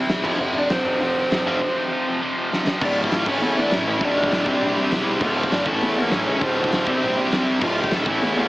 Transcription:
Already playing: E4 E5
0.08 E1 C3 G3 C4, snare, open hi-hat
0.24 F1 F2 C3 F3, crash
0.39 F1 F2 C3 F3 E4 E5
0.53 F1 F2 C3 F3 D4
0.57 D5
0.69 F1 F2 C3 F3 C4 C5, snare, open hi-hat
0.85 F1 F2 C3 F3
1.00 F1 F2 C3 F3 C4 C5, open hi-hat
1.17 F2 C3 F3
1.31 F1 F2 C3 F3, snare, open hi-hat
1.47 F1 F2 C3 F3
1.62 F2 C3 F3
1.77 F2 C3 F3
1.92 F2 C3 F3
2.07 F2 C3 F3
2.21 F2 C3 F3
2.37 F2 C3 F3
2.52 F2 C3 F3, snare
2.67 F2 C3 F3, snare
2.81 D1 D2 A2 D3 A3 D4 F4 D5, kick, crash
3.00 E4 E5
3.04 kick
3.11 D1 F4 F5, snare, open hi-hat
3.26 A1 A2 E3 A3 C#4 E4 A4 C#5, kick, crash
3.42 E2
3.57 E2 D4 D5
3.71 A1 E4 E5, snare, open hi-hat
3.87 A1 E4 E5
4.01 D1 D2 A2 D3 A3 D4 F4 D5, kick, open hi-hat
4.17 D1
4.24 kick
4.31 D1, snare, open hi-hat
4.46 C2 C3 G3 C4 E4 G4 C5, kick
4.61 A#1, open hi-hat
4.76 C2
4.91 E1, snare, open hi-hat
5.20 D1 D2 A2 D3 A3 F4, kick, crash
5.25 A4
5.37 C4 C5
5.43 kick
5.51 G1 D4 D5, snare, open hi-hat
5.65 A1 A2 E3 A3 C#4 E4 A4, kick
5.81 E2, open hi-hat
5.96 E2 A#3 A#4
6.11 A1 C#4 C#5, snare, open hi-hat
6.27 C#2 C#4 C#5
6.40 D1 D2 A2 D3 A3 C4 F4 C5, kick, open hi-hat
6.59 D1
6.64 kick
6.72 D1, snare, open hi-hat
6.87 C2 C3 G3 C4 E4 G4 C5, kick
7.03 A#1, open hi-hat
7.16 C2
7.32 C2, snare, open hi-hat
7.61 D1 D2 A2 D3 A3 F4 F5, kick, crash
7.81 G4 G5, kick
7.90 D1 A4 A5, snare, open hi-hat
8.05 A1 A2 E3 A3 C#4 E4 A4 E5, kick
8.21 E2, open hi-hat
8.36 E2 F4 F5

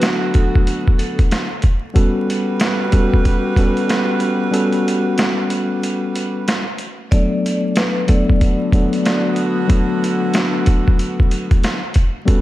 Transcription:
Already playing: D3 F#3 A3 B3 D4 F#4 A4
0.02 snare, closed hi-hat
0.34 A4, kick, closed hi-hat
0.55 kick
0.67 closed hi-hat
0.88 kick
0.98 A4, closed hi-hat
1.19 kick, closed hi-hat
1.31 snare, closed hi-hat
1.62 kick, closed hi-hat
1.93 G3 B3 C#4 F#4 A4 B4, kick, closed hi-hat
2.30 closed hi-hat
2.60 snare, closed hi-hat
2.92 G3 B3 C#4 F#4 A4, kick, closed hi-hat
3.14 kick
3.25 kick, closed hi-hat
3.56 G3 B3 C#4 F#4 A4, kick, closed hi-hat
3.77 closed hi-hat
3.89 snare, closed hi-hat
4.20 closed hi-hat
4.51 G3 B3 C#4 F#4 A4, closed hi-hat
4.72 closed hi-hat
4.88 closed hi-hat
5.18 snare, closed hi-hat
5.50 closed hi-hat
5.83 closed hi-hat
6.16 closed hi-hat
6.48 snare, closed hi-hat
6.78 closed hi-hat
7.11 F#3 A3 B3 D4 A4 D5, kick, closed hi-hat
7.46 closed hi-hat
7.76 B4, snare, closed hi-hat
8.07 F#3 A3 B3 D4 A4 D5, kick, closed hi-hat
8.30 kick
8.41 D3 B3 F#4, kick, closed hi-hat
8.72 F#3 A3 B3 D4 A4, kick, closed hi-hat
8.93 closed hi-hat
9.05 D5, snare, closed hi-hat
9.36 closed hi-hat
9.67 F#3 A3 B3 D4 A4, kick, closed hi-hat
10.04 closed hi-hat
10.34 snare, closed hi-hat
10.66 kick, closed hi-hat
10.88 kick
10.99 closed hi-hat
11.20 kick
11.31 closed hi-hat
11.51 kick, closed hi-hat
11.64 snare, closed hi-hat
11.94 kick, closed hi-hat
12.25 G3 B3 C#4 F#4 A4 B4, kick, closed hi-hat

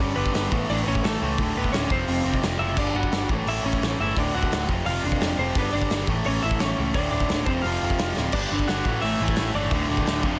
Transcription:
Already playing: C#4 C#5
0.00 G1 G2 D3 G3
0.16 G1 G2 D3 G3 B3 B4
0.26 kick
0.34 G1 G2 D3 G3, snare, open hi-hat
0.51 A1 A2 E3 A3, kick
0.69 A1 A2 E3 A3 D4 D5, open hi-hat
0.83 A1 A2 E3 B4
0.88 A3 C#4 C#5
0.95 kick
1.04 A1 A2 E3 A3 A4, snare, open hi-hat
1.22 C#2 A2 E3 A3 A4
1.38 D1 D2 A2 D3, kick, open hi-hat
1.56 D1 D2 A2 D3 B3 B4
1.64 kick
1.72 D1 D2 A2 D3 C#4 C#5, snare, open hi-hat
1.90 F1 F2 C3 F3 C4 C5, kick
2.08 F1 F2 C3 F3, open hi-hat
2.24 F1 F2 C3 F3
2.34 kick
2.42 F1 F2 C3 F3, snare, open hi-hat
2.59 F#1 F2 C3 F3 E4 E5
2.77 G1 G2 D3 G3 D4 D5, kick, crash
2.94 G1 G2 D3 G3 F#4 F#5
3.03 kick
3.12 G1 G2 D3 G3, snare, open hi-hat
3.29 A1 A2 E3 A3, kick
3.46 A1 A2 E3 A3 E4 E5, open hi-hat
3.64 A1 A2 E3 A3 C#4 C#5
3.73 kick
3.81 A1 A2 E3 A3, snare, open hi-hat
3.99 G1 A2 E3 A3 E4 E5
4.16 D1 D2 A2 D3 D4 D5, kick, open hi-hat
4.34 D1 D2 A2 D3 F#4 F#5
4.43 kick
4.52 D1 D2 A2 D3, snare, open hi-hat
4.69 F1 F2 C3 F3, kick
4.86 F1 F2 C3 F3 F4 F5, open hi-hat
5.04 F1 F2 C3 F3 D4 D5
5.12 kick
5.21 F1 F2 C3 F3, snare, open hi-hat
5.38 F1 F2 C3 F3 C4 C5
5.55 G1 G2 D3 G3 B3 B4, kick, open hi-hat
5.73 G1 G2 D3 G3 D4 D5
5.82 kick
5.90 G1 G2 D3 G3, snare, open hi-hat
6.07 A1 A2 E3 A3, kick
6.24 A1 A2 E3 A3 C#4 C#5, open hi-hat
6.43 A1 A2 E3 A3 E4 E5
6.51 kick
6.59 A1 A2 E3 A3 C#4 C#5, snare, open hi-hat
6.76 C#2 A2 E3 A3
6.94 D1 D2 A2 D3 D4 D5, kick, open hi-hat
7.11 D1 D2 A2 D3 D4 D5
7.20 kick
7.29 D1 D2 A2 D3, snare, open hi-hat
7.46 F1 F2 C3 C4 C5, kick
7.50 F3
7.62 F1 F4 F5, open hi-hat
7.66 F2 C3 F3
7.82 F1 F2 C3 F3
7.90 kick
7.98 F1 F2 C3 F3, snare, open hi-hat
8.17 D1 F2 C3 F3, snare
8.32 G1 G2 D3 G3 D4 D5, kick, crash
8.51 G1 G2 D3 G3
8.59 kick
8.68 G1 G2 D3 G3 F#4 F#5, snare, open hi-hat
8.85 A1 A2 E3 A3, kick
9.01 A1 A2 E3 E4 E5, open hi-hat
9.05 A3
9.20 A1 A2 E3 A3
9.28 kick
9.36 A1 A2 E3, snare, open hi-hat
9.40 A3
9.54 G1 A2 E3 A3 D4 D5
9.71 D1 D2 A2 D3, kick, open hi-hat
9.88 D1 D2 A2 D3
9.97 kick
10.05 D1 D2 A2 D3, snare, open hi-hat
10.23 F1 F2 C3 F3, kick

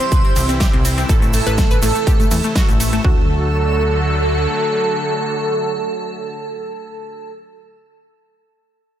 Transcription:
Already playing: C3 E3 G3 E4 G4 C5 E6
0.00 C4, closed hi-hat
0.12 C2 B4, kick, closed hi-hat, ride, shaker
0.25 C4, closed hi-hat
0.36 C2 C4, open hi-hat, ride, shaker
0.49 C4, closed hi-hat, shaker
0.60 G4, kick, snare, closed hi-hat, ride, shaker
0.73 C2 C4, closed hi-hat
0.85 C4, open hi-hat, ride, shaker
0.98 C4, closed hi-hat, shaker
1.09 A1 A3 A4, kick, closed hi-hat, ride, shaker
1.22 A3, closed hi-hat, shaker
1.33 A3 A4, open hi-hat, ride, shaker
1.47 A1 B4, closed hi-hat, shaker
1.58 A3, kick, snare, closed hi-hat, ride, shaker
1.71 B4, closed hi-hat, shaker
1.82 A1 A3 A4, open hi-hat, ride, shaker
1.95 A3, closed hi-hat, shaker
2.07 A2 G4, kick, closed hi-hat, ride, shaker
2.20 A3, closed hi-hat, shaker
2.31 E2 A3, open hi-hat, ride, shaker
2.44 A3, closed hi-hat, shaker
2.55 F#4, kick, snare, closed hi-hat, ride, shaker
2.69 A1 A3, closed hi-hat, shaker
2.80 A3, open hi-hat, ride, shaker
2.92 A3, closed hi-hat, shaker
3.04 D2 D3 F#3 A3 F#4 A4, kick

